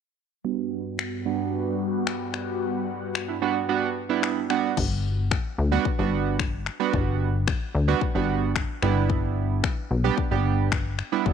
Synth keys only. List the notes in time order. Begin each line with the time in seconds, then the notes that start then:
0.44 G3 B3 D4 F#4
1.26 G3 B3 D4 F#4
3.28 D4 E4
3.42 G3 B3 D4 F#4
3.69 G3 B3 D4 F#4
4.09 G3 B3 D4 E4
4.50 G3 B3 D4 F#4
5.72 G3 B3 D4 F#4
5.99 G3 B3 D4 F#4
6.80 G3 B3 D4 F#4
7.88 G3 B3 D4 F#4
8.15 G3 B3 D4 F#4
8.82 G3 B3 D4 E4
10.04 G3 B3 D4 G4
10.31 G3 B3 D4 G4
11.12 G3 B3 D4 E4